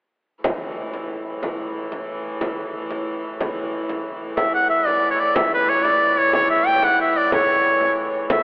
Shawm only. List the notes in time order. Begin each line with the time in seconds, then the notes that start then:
4.37 E5
4.54 F#5
4.70 E5
4.86 D5
5.10 C#5
5.19 D5
5.35 E5
5.54 B4
5.69 C#5
5.85 D5
6.18 C#5
6.34 C#5
6.50 E5
6.66 G5
6.84 F#5
7.01 E5
7.17 D5
7.33 C#5
8.32 E5